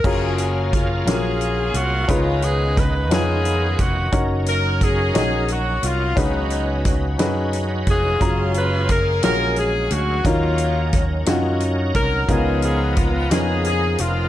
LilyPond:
<<
  \new Staff \with { instrumentName = "Saxophone section" } { \time 6/8 \key fis \major \tempo 4. = 59 << { gis'8 gis'8 eis'8 gis'4 fis'8 | eis'8 gis'8 b'8 gis'4 fis'8 | r8 ais'8 gis'8 gis'8 fis'8 eis'8 | dis'4 r4. gis'8~ |
gis'8 b'8 ais'8 ais'8 gis'8 fis'8 | eis'4 r4. ais'8 | gis'8 gis'8 eis'8 gis'8 gis'8 eis'8 | } \\ { <cis' eis'>4. <cis' eis'>4. | <gis b>4. <b eis'>4. | r2. | <fis b>4. r4 <cis' eis'>8~ |
<cis' eis'>4 r2 | <ais cis'>4. r4. | <b eis'>4. r4. | } >> }
  \new Staff \with { instrumentName = "Grand piano" } { \time 6/8 \key fis \major <fis cis' eis' gis' ais'>4 r8 <fis cis' eis' gis' ais'>4 r8 | <cis' dis' eis' gis' b'>4 r8 <cis' dis' eis' gis' b'>4 r8 | <cis' dis' fis' ais' cis''>4 r8 <cis' dis' fis' ais' dis''>4 r8 | <cis' dis' fis' gis' b'>4 r8 <cis' dis' fis' gis' b'>4 r8 |
<fis cis' eis' gis' ais''>4 r8 <cis' eis' fis' gis' ais'>4 r8 | <fis cis' dis' eis' ais'>4 r8 <cis' dis' eis' fis' cis''>4 r8 | <b cis' dis' eis' ais'>4 r8 <b cis' dis' eis' gis'>4 r8 | }
  \new Staff \with { instrumentName = "Grand piano" } { \clef bass \time 6/8 \key fis \major r2. | cis4. r4. | r2. | cis4. r4. |
r2. | dis4. r4. | cis4. r4. | }
  \new Staff \with { instrumentName = "Tonewheel organ" } { \time 6/8 \key fis \major <fis ais gis' eis''>2. | <dis cis' dis' b'>2. | <fis cis' dis' ais'>2. | <fis cis' dis' b'>2. |
<fis gis g' gis' eis''>2. | <fis cis' dis' ais'>2. | <eis b dis' ais'>2. | }
  \new Staff \with { instrumentName = "Fingered electric bass" } { \clef bass \time 6/8 \key fis \major fis,,4. ais,,4 bis,,8 | cis,4. eis,4 eis,,8 | fis,,4. ais,,4 bis,,8 | cis,4. fis,4 eis,,8 |
fis,,4. ais,,4 d,8 | dis,4. fis,4 bis,,8 | cis,4. eis,4 eis,,8 | }
  \new DrumStaff \with { instrumentName = "Drums" } \drummode { \time 6/8 <cymc bd>8 hh8 <hh bd>8 <hh sn>8 hh8 hh8 | <hh bd>8 hh8 <hh bd sn>8 <hh sn>8 hh8 <hh bd>8 | <hh bd>8 hh8 <hh bd>8 <hh sn>8 hh8 hh8 | <hh bd>8 hh8 <hh bd sn>8 <hh sn>8 hh8 <hh bd>8 |
<hh bd>8 hh8 <hh bd>8 <hh sn>8 hh8 hh8 | <hh bd>8 hh8 <hh bd sn>8 <hh sn>8 hh8 <hh bd>8 | <hh bd>8 hh8 <hh bd>8 <hh sn>8 hh8 hh8 | }
>>